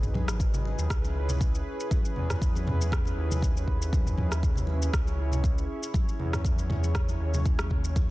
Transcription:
0.00 0.30 B1 medium
0.00 0.87 F#3 medium
0.00 0.87 D#4 medium
0.00 8.10 G#4 medium
0.00 0.87 B4 medium
0.00 mid tom medium
0.00 shaker soft
0.14 mid tom medium
0.14 high conga loud
0.28 0.73 G#1 loud
0.28 cross-stick medium
0.28 muted conga soft
0.28 shaker medium
0.40 kick loud
0.40 shaker medium
0.54 low conga loud
0.54 shaker soft
0.65 muted conga medium
0.78 0.87 D#2 medium
0.78 shaker medium
0.90 1.61 C#2 loud
0.90 8.10 C#4 medium
0.90 8.10 E4 medium
0.90 4.90 B4 medium
0.90 kick loud
0.90 cross-stick medium
0.90 shaker medium
1.04 muted conga medium
1.04 shaker soft
1.29 low conga loud
1.29 shaker medium
1.41 kick loud
1.41 muted conga soft
1.41 shaker medium
1.55 shaker soft
1.80 shaker medium
1.91 kick loud
1.91 muted conga soft
1.91 high conga loud
1.91 shaker medium
2.05 shaker soft
2.16 3.13 E2 medium
2.16 low conga medium
2.30 cross-stick medium
2.30 mid tom medium
2.30 muted conga soft
2.30 shaker medium
2.42 kick loud
2.42 high conga medium
2.42 shaker medium
2.55 high conga medium
2.55 shaker soft
2.67 mid tom medium
2.67 muted conga soft
2.67 low conga medium
2.81 high conga medium
2.81 shaker medium
2.92 kick loud
2.92 cross-stick medium
2.92 shaker medium
3.05 muted conga soft
3.05 shaker soft
3.17 4.89 D#2 medium
3.31 high conga medium
3.31 low conga medium
3.31 shaker medium
3.42 kick loud
3.42 muted conga soft
3.42 shaker medium
3.55 high conga medium
3.55 shaker soft
3.68 kick medium
3.82 shaker medium
3.93 kick loud
3.93 muted conga medium
3.93 high conga medium
3.93 shaker medium
4.07 mid tom medium
4.07 shaker soft
4.17 mid tom medium
4.17 high conga medium
4.31 cross-stick medium
4.31 muted conga soft
4.31 shaker medium
4.43 kick loud
4.43 shaker medium
4.56 low conga medium
4.56 shaker soft
4.67 muted conga medium
4.82 shaker medium
4.93 5.65 C#2 loud
4.93 8.10 C#5 medium
4.93 kick loud
4.93 cross-stick medium
4.93 shaker medium
5.07 muted conga medium
5.07 shaker soft
5.32 low conga medium
5.32 shaker medium
5.43 kick loud
5.43 muted conga soft
5.43 shaker medium
5.58 shaker soft
5.83 shaker medium
5.94 kick loud
5.94 muted conga medium
5.94 high conga loud
5.94 shaker medium
6.09 shaker soft
6.19 7.16 E2 medium
6.19 low conga medium
6.33 cross-stick medium
6.33 mid tom medium
6.33 muted conga soft
6.33 shaker medium
6.45 kick loud
6.45 high conga medium
6.45 shaker medium
6.58 high conga medium
6.58 shaker soft
6.70 mid tom medium
6.70 muted conga medium
6.70 low conga medium
6.83 high conga medium
6.83 shaker medium
6.95 kick loud
6.95 cross-stick medium
6.95 shaker medium
7.09 muted conga medium
7.09 shaker soft
7.20 8.10 D#2 medium
7.34 high conga medium
7.34 low conga loud
7.34 shaker medium
7.46 kick loud
7.46 muted conga soft
7.46 shaker medium
7.59 cross-stick medium
7.59 high conga medium
7.59 shaker soft
7.70 kick medium
7.70 low conga medium
7.84 shaker medium
7.96 kick loud
7.96 muted conga soft
7.96 high conga medium
7.96 shaker medium

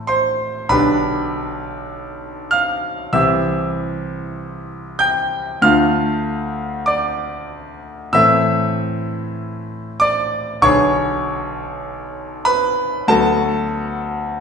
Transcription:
0.00 0.66 A2 medium
0.00 0.67 E3 soft
0.00 0.67 C4 soft
0.00 0.67 E4 soft
0.00 0.74 A4 medium
0.00 0.74 A5 medium
0.07 0.67 C5 medium
0.07 0.70 C6 medium
0.69 3.10 B1 medium
0.69 3.11 D3 medium
0.69 3.11 D4 medium
0.69 3.12 G4 medium
0.69 2.49 B4 medium
0.69 2.53 B5 medium
2.51 3.11 F5 medium
2.51 3.14 F6 medium
3.13 5.60 C2 medium
3.13 5.60 E3 medium
3.13 5.61 C4 medium
3.13 5.61 G4 medium
3.13 4.98 E5 medium
3.13 5.02 E6 medium
4.99 5.60 G5 medium
4.99 5.63 G6 loud
5.62 8.11 D2 medium
5.62 8.11 D3 medium
5.62 8.11 A3 medium
5.62 8.12 F4 medium
5.62 6.85 F5 medium
5.62 6.89 F6 loud
6.86 7.48 D5 medium
6.86 7.51 D6 medium
8.13 10.60 A2 medium
8.13 10.61 E3 medium
8.13 10.61 C4 medium
8.13 10.61 A4 medium
8.13 9.99 E5 medium
8.13 10.02 E6 loud
10.00 10.61 D5 medium
10.00 10.64 D6 loud
10.62 13.05 B1 medium
10.62 13.06 D3 medium
10.62 13.06 B3 medium
10.62 13.07 G#4 medium
10.62 12.44 C#5 medium
10.62 12.48 C#6 loud
12.45 13.06 B4 medium
12.45 13.09 B5 loud
13.08 14.40 D2 medium
13.08 14.40 F#3 medium
13.08 14.40 B3 medium
13.08 14.40 F#4 medium
13.08 14.40 A4 medium
13.08 14.40 A5 loud

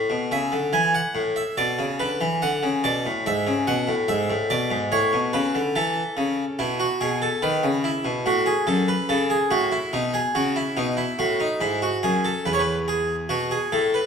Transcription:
0.10 0.30 B2 medium
0.31 0.52 C#3 medium
0.31 0.58 E5 medium
0.52 0.73 D3 medium
0.73 0.99 E3 medium
0.73 0.94 G#5 medium
0.95 1.21 F#5 medium
1.15 1.41 A2 medium
1.36 1.57 E5 medium
1.57 1.78 B2 medium
1.57 1.84 D5 medium
1.79 1.99 C#3 medium
1.99 2.20 D3 medium
1.99 2.26 B4 medium
2.21 2.41 E3 medium
2.42 2.62 D3 medium
2.42 2.68 F#5 medium
2.63 2.83 C#3 medium
2.84 3.04 B2 medium
2.84 3.10 D5 medium
3.06 3.25 A2 medium
3.26 3.46 G#2 medium
3.26 3.52 E5 medium
3.47 3.67 C#3 medium
3.67 3.87 B2 medium
3.67 3.93 F#5 medium
3.88 4.08 A2 medium
4.08 4.29 G#2 medium
4.08 4.34 E5 medium
4.30 4.50 A2 medium
4.50 4.70 B2 medium
4.50 4.76 D5 medium
4.71 4.91 G#2 medium
4.92 5.12 A2 medium
4.92 5.18 C#5 medium
5.13 5.33 B2 medium
5.33 5.54 C#3 medium
5.33 5.59 B4 medium
5.54 5.75 D3 medium
5.75 6.02 E3 medium
5.75 6.57 A4 medium
6.17 6.43 C#3 medium
6.59 6.85 B2 medium
6.59 6.79 E4 medium
6.80 7.00 F#4 medium
7.01 7.27 B2 medium
7.01 7.21 G#4 medium
7.22 7.42 A4 medium
7.42 7.63 D#3 medium
7.42 7.68 B4 medium
7.63 7.89 C#3 medium
7.84 8.10 E4 medium
8.05 8.25 B2 medium
8.26 8.52 A2 medium
8.26 8.46 F#4 medium
8.46 8.66 G#4 medium
8.67 8.93 F#2 medium
8.67 8.87 A4 medium
8.88 9.09 B4 medium
9.09 9.35 C#3 medium
9.09 9.29 A4 medium
9.30 9.50 G#4 medium
9.51 9.77 A2 medium
9.51 9.71 F#4 medium
9.72 9.92 E4 medium
9.93 10.19 B2 medium
9.93 10.13 D#4 medium
10.14 10.34 G#4 medium
10.35 10.61 C#3 medium
10.35 10.56 F#4 medium
10.56 10.76 E4 medium
10.77 11.03 B2 medium
10.77 10.97 D#4 medium
10.97 11.18 E4 medium
11.19 11.45 A2 medium
11.19 11.40 F#4 medium
11.40 11.61 D#4 medium
11.61 11.87 G#2 medium
11.61 11.82 E4 medium
11.82 12.03 F#4 medium
12.03 12.30 F#2 medium
12.03 12.24 G#4 medium
12.24 12.45 A4 medium
12.46 13.28 E2 medium
12.46 12.50 B4 medium
12.53 12.60 C#5 soft
12.59 12.77 B4 medium
12.88 13.14 G#4 medium
13.29 13.56 B2 medium
13.29 13.50 F#4 medium
13.51 13.72 G#4 soft
13.72 13.99 A2 medium
13.72 13.93 A4 soft
13.94 14.06 B4 medium

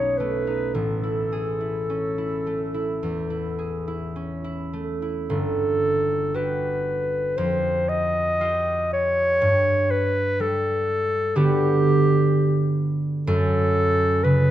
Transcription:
0.00 0.80 B1 soft
0.00 1.88 C#4 soft
0.00 0.46 D#4 soft
0.00 0.80 F#4 soft
0.00 0.19 C#5 soft
0.18 2.45 A3 soft
0.18 0.76 B4 soft
0.47 0.80 D#4 soft
0.74 4.65 A1 soft
0.74 4.16 A4 soft
1.03 1.59 E4 soft
1.32 3.57 G#4 soft
1.61 2.17 E4 soft
1.90 4.15 C#4 soft
2.18 2.73 E4 soft
2.47 4.72 A3 soft
2.74 3.29 E4 soft
3.03 5.33 E2 soft
3.30 3.86 E4 soft
3.59 5.33 G#4 soft
3.88 4.43 E4 soft
4.16 5.33 C#4 soft
4.44 5.01 E4 soft
4.73 5.34 A3 soft
5.02 5.34 E4 soft
5.29 7.41 G1 soft
5.29 6.37 A4 medium
6.34 7.42 F#4 soft
6.34 8.40 G4 soft
6.34 7.39 B4 soft
7.37 9.46 F2 soft
7.37 7.90 C5 medium
7.89 8.92 D#5 medium
8.41 9.46 F4 soft
8.41 11.35 G4 soft
8.93 9.93 C#5 medium
9.42 13.32 G2 soft
9.91 10.42 B4 medium
10.40 13.32 G3 soft
10.40 11.38 A4 medium
11.35 13.32 D3 soft
11.35 13.32 B3 soft
11.35 14.51 F#4 soft
11.35 13.32 G4 soft
11.35 12.81 G4 medium
13.27 14.51 F#2 medium
13.27 14.25 A4 medium
14.23 14.51 C#3 soft
14.23 14.51 B4 medium

